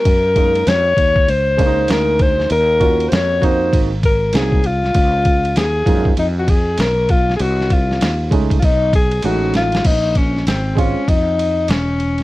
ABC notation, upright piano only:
X:1
M:4/4
L:1/8
Q:"Swing 16ths" 1/4=98
K:Bbm
V:1 name="Upright piano"
z [A,B,DE] z3 [A,B,D=DE]3 | z [B,DFG]2 [B,CEG] z2 [G,B,CE] z | z3 [F,A,B,E] z4 | z3 [A,=A,DE] z2 [^G,A,^C^D]2 |
z3 [A,CDF] z4 |]